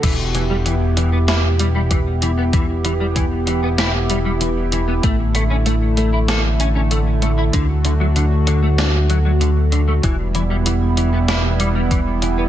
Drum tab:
CC |x-------|--------|--------|--------|
HH |xxxxxxxx|xxxxxxxx|xxxxxxxx|xxxxxxxx|
SD |----o---|----o---|----o---|----o---|
BD |o-----o-|o-o-----|o-------|o-------|

CC |--------|
HH |xxxxxxxx|
SD |----o---|
BD |o-----o-|